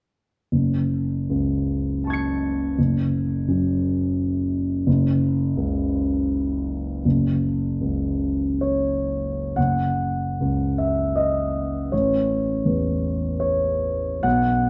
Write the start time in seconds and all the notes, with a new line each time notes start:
0.52 F#1
1.29 C#2
2.04 A5 C#6
2.10 G#6 C#7
2.78 F#1
3.48 F#2
4.87 F#1
5.57 C#2
7.05 F#1
7.81 C#2
8.61 C#5
9.56 F#1 F#5
10.40 C#2
10.78 E5
11.16 D#5
11.92 A1 C#5
12.65 E2
13.40 C#5
14.23 B1 F#5